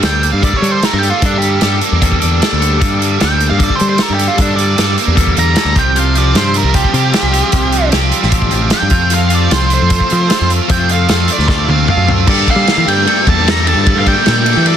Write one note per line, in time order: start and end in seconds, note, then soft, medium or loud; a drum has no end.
0.00 0.30 D2 medium
0.00 0.83 G2 medium
0.00 0.42 G3 medium
0.00 0.43 A#3 medium
0.00 0.43 D4 medium
0.00 5.73 G4 medium
0.00 0.44 A4 medium
0.00 5.73 G5 medium
0.00 snare loud
0.00 closed hi-hat medium
0.05 0.30 G5 medium
0.23 1.82 A#3 medium
0.23 closed hi-hat medium
0.32 0.51 G2 medium
0.32 0.44 F5 medium
0.42 0.87 G2 medium
0.42 0.82 D3 medium
0.42 0.63 G3 medium
0.42 0.63 A#3 medium
0.42 0.62 D4 medium
0.42 0.62 A4 medium
0.42 0.57 D5 medium
0.42 kick loud
0.42 closed hi-hat medium
0.53 0.71 C#5 medium
0.53 kick medium
0.62 0.80 G3 medium
0.62 0.82 G3 medium
0.62 0.82 A#3 medium
0.62 0.83 D4 medium
0.62 0.84 A4 medium
0.62 closed hi-hat medium
0.71 0.85 C5 medium
0.82 1.03 G3 medium
0.82 1.03 A#3 medium
0.82 1.03 D4 medium
0.82 1.02 A4 medium
0.82 0.99 A#4 medium
0.82 snare loud
0.82 closed hi-hat medium
0.93 1.11 G2 medium
0.99 1.10 G4 medium
1.03 1.22 G3 medium
1.03 1.22 A#3 medium
1.03 1.23 D4 medium
1.03 1.23 A4 medium
1.03 closed hi-hat medium
1.10 1.26 F4 medium
1.22 1.66 G2 medium
1.22 1.58 G2 loud
1.22 1.62 D3 medium
1.22 1.43 G3 medium
1.22 1.44 A#3 medium
1.22 1.43 D4 loud
1.22 1.37 D4 medium
1.22 1.42 A4 loud
1.22 kick loud
1.22 closed hi-hat medium
1.38 1.75 G4 medium
1.38 closed hi-hat medium
1.42 1.61 G3 medium
1.42 1.62 A#3 medium
1.42 1.63 D4 medium
1.42 1.63 A4 medium
1.61 1.80 G2 medium
1.61 2.01 G3 medium
1.61 2.02 A#3 medium
1.61 2.02 D4 medium
1.61 2.02 A4 medium
1.61 snare loud
1.61 closed hi-hat loud
1.81 3.40 A#3 medium
1.81 closed hi-hat medium
1.92 2.19 E2 medium
2.01 2.45 G2 medium
2.01 2.41 D3 medium
2.01 2.22 G3 medium
2.01 2.21 A#3 medium
2.01 2.20 D4 medium
2.01 2.20 A4 medium
2.01 kick loud
2.01 closed hi-hat loud
2.12 kick medium
2.20 2.40 E2 medium
2.20 2.39 G3 medium
2.20 2.40 A#3 medium
2.20 2.41 D4 medium
2.20 2.41 A4 medium
2.20 closed hi-hat medium
2.40 2.62 G3 medium
2.40 2.61 A#3 medium
2.40 2.60 D4 medium
2.40 2.60 A4 medium
2.40 snare loud
2.40 closed hi-hat medium
2.53 2.78 D2 medium
2.60 2.79 G3 medium
2.60 2.80 A#3 medium
2.60 2.80 D4 medium
2.60 2.80 A4 medium
2.60 closed hi-hat medium
2.78 3.24 G2 loud
2.78 3.17 G2 medium
2.78 3.19 D3 loud
2.78 3.00 G3 medium
2.78 3.00 A#3 medium
2.78 2.99 D4 medium
2.78 2.99 A4 loud
2.78 kick loud
2.78 closed hi-hat medium
2.99 3.19 G3 medium
2.99 3.19 A#3 medium
2.99 3.19 D4 medium
2.99 3.20 A4 medium
2.99 closed hi-hat medium
3.19 3.48 D2 medium
3.19 3.58 G3 medium
3.19 3.57 A#3 medium
3.19 3.58 D4 medium
3.19 3.58 A4 medium
3.19 3.46 G5 medium
3.19 snare loud
3.19 closed hi-hat medium
3.40 4.39 A#3 medium
3.40 closed hi-hat medium
3.50 3.68 G2 medium
3.50 3.63 F5 medium
3.57 3.98 G2 medium
3.57 3.98 D3 medium
3.57 3.80 G3 medium
3.57 3.79 A#3 medium
3.57 3.78 D4 medium
3.57 3.77 A4 medium
3.57 kick loud
3.57 closed hi-hat medium
3.63 3.75 D5 medium
3.70 kick medium
3.75 3.97 D4 medium
3.75 3.97 A4 medium
3.75 3.87 C5 medium
3.80 3.96 G3 medium
3.80 3.98 G3 medium
3.80 3.97 A#3 medium
3.80 closed hi-hat medium
3.89 4.02 C5 medium
3.97 4.19 G3 medium
3.97 4.18 A#3 medium
3.97 4.17 D4 medium
3.97 4.17 A4 medium
3.97 snare loud
3.97 closed hi-hat medium
4.02 4.13 A#4 medium
4.10 4.27 G2 medium
4.10 4.28 G4 medium
4.18 4.36 G3 medium
4.18 4.36 A#3 medium
4.18 4.36 D4 medium
4.18 4.37 A4 medium
4.18 closed hi-hat medium
4.28 4.39 F4 medium
4.36 4.77 G2 medium
4.36 4.74 G2 loud
4.36 4.77 D3 medium
4.36 4.57 G3 medium
4.36 4.55 A#3 loud
4.36 4.55 D4 loud
4.36 4.54 A4 loud
4.36 kick loud
4.36 closed hi-hat loud
4.41 4.52 D4 medium
4.55 4.76 G3 medium
4.55 4.75 A#3 medium
4.55 4.76 D4 medium
4.55 4.77 A4 medium
4.55 4.92 D5 medium
4.55 closed hi-hat medium
4.76 4.96 G2 medium
4.76 5.15 G3 medium
4.76 5.15 A#3 medium
4.76 5.14 D4 medium
4.76 5.15 A4 medium
4.76 snare loud
4.76 closed hi-hat loud
4.98 5.77 A#3 medium
4.98 closed hi-hat medium
5.07 5.34 E2 medium
5.14 5.55 G2 medium
5.14 5.55 D3 medium
5.14 5.37 G3 medium
5.14 5.37 A#3 medium
5.14 5.35 D4 medium
5.14 5.35 A4 loud
5.14 kick loud
5.14 closed hi-hat medium
5.27 kick medium
5.36 5.55 E2 medium
5.36 5.54 G3 medium
5.36 5.55 A#3 medium
5.36 5.55 D4 medium
5.36 5.56 A4 medium
5.36 5.76 A#5 medium
5.36 closed hi-hat medium
5.55 5.76 G3 medium
5.55 5.75 A#3 medium
5.55 5.75 D4 medium
5.55 5.75 A4 medium
5.55 snare loud
5.55 closed hi-hat medium
5.65 5.75 D2 medium
5.75 6.32 C2 medium
5.75 5.94 C3 medium
5.75 5.95 F3 medium
5.75 5.96 C4 medium
5.75 5.96 F4 medium
5.75 5.96 G4 medium
5.75 8.90 G4 medium
5.75 12.24 F5 medium
5.75 5.99 G5 medium
5.75 12.25 C6 medium
5.75 kick loud
5.75 closed hi-hat medium
5.95 6.74 C3 medium
5.95 6.33 F3 loud
5.95 6.17 C4 medium
5.95 6.16 F4 loud
5.95 6.15 G4 loud
5.95 closed hi-hat loud
5.99 6.18 F5 medium
6.15 6.74 F3 medium
6.15 6.34 C4 soft
6.15 6.35 F4 medium
6.15 6.36 G4 medium
6.15 6.36 D5 medium
6.15 closed hi-hat medium
6.33 6.62 G2 medium
6.33 6.74 F3 medium
6.33 6.74 C4 medium
6.33 6.76 F4 medium
6.33 6.74 G4 medium
6.33 6.56 C5 medium
6.33 snare loud
6.33 closed hi-hat medium
6.54 7.54 G3 medium
6.54 6.75 A#4 medium
6.54 closed hi-hat medium
6.64 6.82 C2 medium
6.74 7.14 C3 medium
6.74 7.12 F3 medium
6.74 6.95 C4 medium
6.74 6.94 F4 medium
6.74 7.90 G4 medium
6.74 6.92 G4 medium
6.74 kick loud
6.74 closed hi-hat medium
6.84 kick medium
6.93 7.12 C3 medium
6.93 7.12 C4 medium
6.93 7.13 F4 medium
6.93 7.13 G4 medium
6.93 closed hi-hat medium
7.12 7.53 F3 medium
7.12 7.33 C4 medium
7.12 7.33 F4 medium
7.12 7.31 G4 medium
7.12 snare loud
7.12 closed hi-hat medium
7.23 7.41 C2 medium
7.32 7.53 C4 medium
7.32 7.53 F4 medium
7.32 7.53 G4 medium
7.32 closed hi-hat medium
7.52 7.89 C2 medium
7.52 7.93 C3 loud
7.52 7.90 F3 medium
7.52 7.74 C4 medium
7.52 7.73 F4 loud
7.52 7.71 G4 loud
7.52 kick loud
7.52 closed hi-hat medium
7.72 8.32 F3 medium
7.72 7.91 C4 medium
7.72 7.91 F4 medium
7.72 7.92 G4 medium
7.72 closed hi-hat medium
7.91 8.11 C2 medium
7.91 8.32 F3 medium
7.91 8.33 C4 medium
7.91 8.33 F4 medium
7.91 8.32 G4 medium
7.91 snare loud
7.91 closed hi-hat medium
8.12 8.92 G3 medium
8.12 closed hi-hat medium
8.23 8.50 A1 medium
8.23 snare soft
8.32 8.72 C3 medium
8.32 8.72 F3 medium
8.32 8.53 C4 loud
8.32 8.53 F4 medium
8.32 8.51 G4 medium
8.32 kick loud
8.32 closed hi-hat loud
8.42 kick medium
8.51 8.70 A1 medium
8.51 8.73 C4 medium
8.51 8.73 F4 medium
8.51 8.72 G4 medium
8.51 closed hi-hat medium
8.70 8.92 F3 medium
8.70 8.91 C4 medium
8.70 8.91 F4 medium
8.70 8.90 G4 medium
8.70 9.11 G5 loud
8.70 snare loud
8.70 closed hi-hat loud
8.82 8.90 G2 medium
8.90 9.47 F2 loud
8.90 9.10 F2 medium
8.90 9.10 C3 medium
8.90 9.10 F3 medium
8.90 9.11 A3 medium
8.90 9.11 C4 medium
8.90 9.12 F4 medium
8.90 12.24 A4 medium
8.90 kick loud
8.90 closed hi-hat medium
9.10 9.88 F2 medium
9.10 9.51 C3 loud
9.10 9.32 F3 loud
9.10 9.31 A3 medium
9.10 9.31 C4 loud
9.10 9.30 F4 loud
9.10 9.35 F5 medium
9.10 closed hi-hat loud
9.30 9.49 F3 medium
9.30 9.49 A3 medium
9.30 9.50 C4 medium
9.30 9.50 F4 medium
9.30 closed hi-hat medium
9.35 9.52 D5 medium
9.49 9.78 C2 medium
9.49 9.87 F3 medium
9.49 9.89 A3 medium
9.49 9.89 C4 medium
9.49 9.89 F4 medium
9.49 9.71 C5 medium
9.49 snare loud
9.49 closed hi-hat medium
9.70 11.27 A3 medium
9.70 10.49 C5 medium
9.70 closed hi-hat medium
9.82 10.00 F2 medium
9.88 10.29 F2 medium
9.88 10.30 C3 medium
9.88 10.10 F3 loud
9.88 10.11 A3 medium
9.88 10.09 C4 loud
9.88 10.08 F4 loud
9.88 kick loud
9.88 closed hi-hat loud
10.00 kick medium
10.09 10.26 F3 medium
10.09 10.30 F3 medium
10.09 10.28 A3 medium
10.09 10.28 C4 medium
10.09 10.28 F4 medium
10.09 closed hi-hat medium
10.27 10.49 F3 medium
10.27 10.50 A3 medium
10.27 10.49 C4 medium
10.27 10.48 F4 medium
10.27 snare loud
10.27 closed hi-hat loud
10.41 10.59 F2 medium
10.49 10.67 F3 medium
10.49 10.67 A3 medium
10.49 10.67 C4 medium
10.49 10.68 F4 medium
10.49 closed hi-hat medium
10.68 11.09 F2 loud
10.68 11.06 F2 loud
10.68 11.09 C3 loud
10.68 10.89 F3 medium
10.68 10.87 A3 loud
10.68 10.87 C4 loud
10.68 10.87 F4 loud
10.68 10.90 G5 loud
10.68 kick loud
10.68 closed hi-hat medium
10.88 11.07 F3 medium
10.88 11.07 A3 medium
10.88 11.07 C4 medium
10.88 11.08 F4 medium
10.88 11.29 F5 medium
10.88 closed hi-hat medium
11.08 11.28 F2 medium
11.08 11.47 F3 medium
11.08 11.48 A3 medium
11.08 11.48 C4 medium
11.08 11.49 F4 medium
11.08 snare loud
11.08 closed hi-hat medium
11.27 12.27 A3 medium
11.27 closed hi-hat medium
11.32 11.48 D5 medium
11.38 11.66 D2 medium
11.38 snare soft
11.48 11.88 F2 medium
11.48 11.88 C3 medium
11.48 11.68 F3 medium
11.48 11.67 A3 medium
11.48 11.67 C4 loud
11.48 11.66 F4 medium
11.48 11.68 D5 medium
11.48 kick loud
11.48 snare medium
11.67 11.87 D2 medium
11.67 11.86 F3 medium
11.67 11.87 A3 medium
11.67 11.87 C4 medium
11.67 11.88 F4 medium
11.67 11.89 F5 medium
11.67 high tom medium
11.88 12.08 F3 medium
11.88 12.07 A3 medium
11.88 12.07 C4 medium
11.88 12.06 F4 medium
11.88 12.09 F5 medium
11.88 mid tom medium
11.97 12.25 F#2 loud
12.07 12.27 F3 medium
12.07 12.27 A3 medium
12.07 12.27 C4 medium
12.07 12.26 F4 medium
12.07 floor tom medium
12.26 12.46 G2 medium
12.26 12.48 G2 medium
12.26 12.48 D3 loud
12.26 12.49 G3 loud
12.26 14.77 A3 medium
12.26 12.50 A#3 loud
12.26 12.50 D4 loud
12.26 12.48 G4 loud
12.26 12.50 D5 medium
12.26 14.77 G5 medium
12.26 kick loud
12.26 crash loud
12.30 12.50 A4 loud
12.47 12.69 G2 medium
12.47 12.68 D3 medium
12.47 12.69 G3 medium
12.47 12.69 A#3 medium
12.47 12.70 D4 medium
12.47 12.68 G4 medium
12.47 12.70 A4 loud
12.47 12.90 F5 loud
12.47 kick medium
12.47 ride medium
12.56 12.66 G3 medium
12.67 12.86 G2 medium
12.67 12.85 D3 medium
12.67 12.87 G3 medium
12.67 12.87 A#3 loud
12.67 12.88 D4 medium
12.67 12.87 G4 loud
12.67 12.87 A4 loud
12.67 snare loud
12.67 ride loud
12.77 12.87 E3 medium
12.86 13.05 G2 medium
12.86 13.05 D3 medium
12.86 13.07 G3 medium
12.86 13.07 A#3 loud
12.86 13.07 D4 medium
12.86 13.07 G4 loud
12.86 13.08 A4 medium
12.86 13.29 G5 loud
12.86 ride medium
13.06 13.26 G2 medium
13.06 13.25 D3 medium
13.06 13.27 G3 medium
13.06 13.28 A#3 medium
13.06 13.28 D4 loud
13.06 13.26 G4 loud
13.06 13.28 A4 loud
13.06 ride loud
13.27 13.73 E2 medium
13.27 13.47 G2 medium
13.27 13.46 D3 medium
13.27 13.48 G3 medium
13.27 13.48 A#3 medium
13.27 13.48 D4 medium
13.27 13.45 G4 medium
13.27 13.48 A4 medium
13.27 13.49 A5 loud
13.27 kick medium
13.27 ride medium
13.44 13.67 G2 loud
13.44 13.67 D3 medium
13.44 13.66 G3 loud
13.44 13.67 G4 loud
13.44 ride loud
13.48 13.68 G3 loud
13.48 13.67 A#3 loud
13.48 13.68 D4 medium
13.48 13.68 A4 loud
13.48 13.67 A#5 loud
13.48 snare loud
13.67 13.87 G2 medium
13.67 13.86 D3 medium
13.67 13.87 G3 medium
13.67 13.87 A#3 medium
13.67 13.88 D4 medium
13.67 13.87 G4 medium
13.67 13.88 A4 medium
13.67 13.98 A5 loud
13.67 ride medium
13.75 13.94 G2 loud
13.86 14.05 G2 loud
13.86 14.04 D3 loud
13.86 14.05 G3 loud
13.86 14.06 A#3 loud
13.86 14.06 D4 loud
13.86 14.07 G4 loud
13.86 14.07 A4 loud
13.86 kick loud
13.86 ride loud
13.96 14.14 G2 loud
13.96 14.06 F5 medium
14.05 14.25 G2 medium
14.05 14.25 D3 loud
14.05 14.26 G3 medium
14.05 14.26 A#3 medium
14.05 14.26 D4 loud
14.05 14.28 G4 loud
14.05 14.26 A4 medium
14.05 14.68 G5 loud
14.05 kick medium
14.05 ride medium
14.25 14.46 G2 medium
14.25 14.54 A#2 loud
14.25 14.45 D3 medium
14.25 14.46 G3 loud
14.25 14.46 A#3 loud
14.25 14.47 D4 loud
14.25 14.48 G4 loud
14.25 14.47 A4 medium
14.25 snare loud
14.25 ride loud
14.46 14.65 G2 medium
14.46 14.64 D3 medium
14.46 14.65 G3 loud
14.46 14.65 A#3 medium
14.46 14.66 D4 medium
14.46 14.67 G4 medium
14.46 14.66 A4 medium
14.46 ride medium
14.57 14.77 E3 medium
14.65 14.77 G2 medium
14.65 14.77 D3 loud
14.65 14.77 G3 loud
14.65 14.77 A#3 loud
14.65 14.77 D4 loud
14.65 14.77 G4 loud
14.65 14.77 A4 loud
14.65 14.77 D5 medium
14.65 ride loud